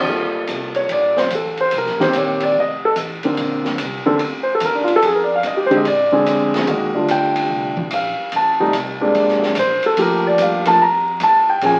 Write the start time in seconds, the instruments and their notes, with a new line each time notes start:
0.06 upright bass D2, grand piano G3 A#3 F4 A4, kick
0.47 upright bass C2, kick, hi-hat pedal, ride
0.75 grand piano C#5, ride
0.89 upright bass A#1, grand piano D5, kick, ride
1.17 grand piano C5, snare
1.30 upright bass A1, kick, hi-hat pedal, ride
1.35 grand piano A4
1.57 grand piano C5, ride
1.71 upright bass C2, kick, ride
1.78 grand piano A#4
1.85 upright bass A#1, snare
1.99 upright bass G1, grand piano D#3 A#3 C4 G4 C5, snare
2.13 upright bass A#1, kick, hi-hat pedal, ride
2.18 grand piano C#5
2.40 grand piano D5, ride
2.55 upright bass F1, kick
2.60 grand piano D#5
2.85 grand piano A4
2.96 upright bass A1, kick, hi-hat pedal, ride
3.23 grand piano D3 A#3 C4 A#4, muted upright bass stroke, ride
3.37 upright bass A#1, kick, ride
3.64 muted upright bass stroke, snare
3.78 upright bass C2, kick, hi-hat pedal, ride
4.06 grand piano D3 A#3 C4 A4, muted upright bass stroke
4.19 upright bass D2, kick, ride
4.43 grand piano C5
4.55 grand piano A4
4.60 upright bass D#2, kick, hi-hat pedal, ride
4.65 grand piano A#4
4.74 grand piano D4
4.84 grand piano F4, ride
4.96 grand piano A4
5.02 upright bass F2, grand piano G#4, kick, ride
5.16 grand piano A#4
5.24 grand piano D5
5.36 grand piano F5
5.43 upright bass G#2, kick, hi-hat pedal, ride
5.47 grand piano D#5
5.57 grand piano G4
5.66 grand piano D3 C5
5.71 grand piano G#3 C4 G4, ride
5.77 grand piano D#5
5.85 upright bass A#2, grand piano D5, kick, ride
6.12 grand piano D3 G#3 C4 G#4
6.26 upright bass F2, kick, hi-hat pedal, ride
6.54 snare, ride
6.67 upright bass D#2, grand piano D#3 G#3 A#3 F#4 D#5, kick, ride
6.94 grand piano D3 G3 A3 F4
7.08 upright bass D2, grand piano G5, kick, hi-hat pedal, ride
7.36 ride
7.49 upright bass C2, kick
7.77 kick
7.91 upright bass A#1, grand piano F5, kick, hi-hat pedal, ride
8.18 muted upright bass stroke
8.32 upright bass A1, kick, ride
8.36 grand piano A5
8.60 grand piano C3 G3 A3 D#4
8.73 upright bass C2, kick, hi-hat pedal, ride
9.01 grand piano C3 G#3 A#3 D4
9.14 upright bass G#1, kick, ride
9.28 snare
9.42 snare
9.55 upright bass A#1, kick, hi-hat pedal, ride
9.59 grand piano C5
9.82 grand piano A4, muted upright bass stroke, ride
9.97 upright bass D2, grand piano F3 A3 A#3 G4, kick, ride
10.02 grand piano A#4
10.27 grand piano D5
10.38 upright bass G2, grand piano F5, kick, hi-hat pedal, ride
10.65 grand piano F3 A3 A#3 A#4 A5, ride
10.79 upright bass F2, grand piano A#5, kick
11.20 upright bass A2, grand piano A5, kick, hi-hat pedal, ride
11.50 grand piano G5
11.61 upright bass A#2, grand piano F3 A#3 C#4 G#4, kick, ride
11.66 grand piano G#5